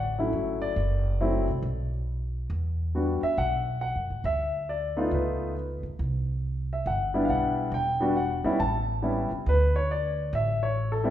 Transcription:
Already playing: upright bass A1, grand piano F#5
0.18 grand piano F#3 A3 C#4 E4
0.33 upright bass G1
0.62 grand piano D5
0.76 upright bass F#1
1.21 grand piano F#3 A3 C4 E4
1.48 upright bass C2
1.62 upright bass B1
2.50 upright bass E2
2.95 grand piano G3 B3 D4 F#4
3.22 grand piano E5, muted upright bass stroke
3.37 upright bass B1, grand piano F#5
3.81 grand piano F#5
3.96 upright bass F#2
4.10 upright bass A2
4.24 upright bass D2, grand piano E5
4.69 grand piano D5
4.97 grand piano A3 B3 D#4 F4
5.11 upright bass C#2, grand piano B4
5.83 upright bass C#2
5.99 upright bass C2
6.73 grand piano E5
6.86 upright bass G1, grand piano F#5
7.14 grand piano G3 B3 D4 E4
7.25 upright bass B1, grand piano F5
7.30 grand piano F#5
7.72 upright bass E1, grand piano G5
8.00 grand piano G3 B3 D4 F#4
8.17 grand piano F#5
8.44 upright bass E2, grand piano G3 B3 C#4 E4
8.60 upright bass A1, grand piano A5
9.02 grand piano G3 B3 C#4 E4
9.31 upright bass C#2
9.46 upright bass D2, grand piano B4
9.76 grand piano C#5
9.91 grand piano D5
10.33 upright bass A1, grand piano E5
10.63 grand piano C#5
10.92 grand piano A4
11.04 grand piano G3 B3 C4 E4

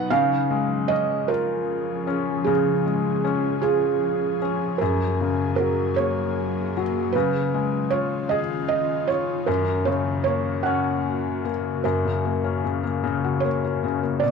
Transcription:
Already playing: felt piano F#3 B3 D#4
0.10 felt piano C#3 F5, ambient pad F3 C#4 G#4
0.50 felt piano G#3
0.88 felt piano C#4 D#5
1.28 felt piano F4 A#4
2.07 felt piano C#4
2.44 felt piano C#3 G#4
2.86 felt piano G#3
3.24 felt piano C#4
3.62 felt piano F4 G#4
4.42 felt piano C#4
4.78 felt piano F#2 A#4, ambient pad F#3 A#3
5.21 felt piano C#3
5.56 felt piano F#3 A#4
5.96 felt piano A#3 C#5
6.77 felt piano F#3
7.12 felt piano C#3 B4, ambient pad D#3 C#4 F4
7.54 felt piano G#3
7.90 felt piano F4 C#5
8.29 felt piano G#4 D#5
8.68 felt piano D#5
9.07 felt piano F4 C#5
9.46 felt piano F#2 A#4, ambient pad C#3 A#3 F#4
9.85 felt piano C#3 C#5
10.24 felt piano A#3 C#5
10.63 felt piano C#4 F#5
11.45 felt piano A#3
11.84 felt piano F#2 A#4
12.05 felt piano C#3
12.25 felt piano A#3
12.44 felt piano C#4
12.64 felt piano C#3
12.83 felt piano A#3
13.04 felt piano C#3
13.24 felt piano F#4
13.40 felt piano A#3 C#5
13.64 felt piano C#4
13.84 felt piano C#3
14.03 felt piano A#3
14.20 felt piano B2 D5

